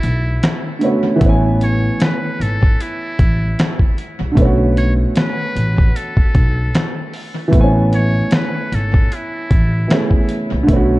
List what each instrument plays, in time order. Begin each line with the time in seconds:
Already playing: upright piano D3 A3 B3 C#4 F#4, muted trumpet E4
0.03 upright bass B1, closed hi-hat
0.43 finger snap, snare, closed hi-hat
0.79 upright piano D3 A3 B3, closed hi-hat
0.84 upright piano C#4 F#4
1.16 upright piano E3 A3
1.21 upright bass A1, upright piano B3, kick, closed hi-hat
1.26 upright piano C#4 G#5
1.61 muted trumpet C#5, closed hi-hat
2.00 muted trumpet B4, finger snap, snare, closed hi-hat
2.40 upright bass G#1, muted trumpet A4, closed hi-hat
2.63 kick
2.80 muted trumpet E4, closed hi-hat
3.19 upright bass A1, kick, closed hi-hat
3.59 finger snap, snare, closed hi-hat
3.80 kick
3.98 closed hi-hat
4.21 upright bass C2
4.32 upright piano D3 A3
4.37 upright bass B1, upright piano B3, kick, closed hi-hat
4.42 upright piano C#4 F#4
4.77 muted trumpet C#5, closed hi-hat
5.16 muted trumpet B4, finger snap, snare, closed hi-hat
5.55 upright bass A1, closed hi-hat
5.78 kick
5.96 muted trumpet A4, closed hi-hat
6.17 muted upright bass stroke, kick
6.35 upright bass B1, kick, closed hi-hat
6.74 finger snap, snare, closed hi-hat
7.13 open hi-hat
7.48 upright piano E3 A3
7.53 upright bass A1, upright piano B3, kick, closed hi-hat
7.58 upright piano C4 G#5
7.64 upright piano C#4
7.93 muted trumpet C#5, closed hi-hat
8.31 finger snap, snare, closed hi-hat
8.35 muted trumpet B4
8.72 upright bass G#1, muted trumpet A4, closed hi-hat
8.94 kick
9.12 muted trumpet E4, closed hi-hat
9.51 upright bass A1, kick, closed hi-hat
9.88 upright piano E3 A3 B3, finger snap, snare, closed hi-hat
9.93 upright piano C#4 G#4
10.11 kick
10.29 closed hi-hat
10.52 upright bass C2
10.63 upright piano D3 A3
10.68 upright bass B1, upright piano B3, kick, closed hi-hat
10.73 upright piano C#4 F#4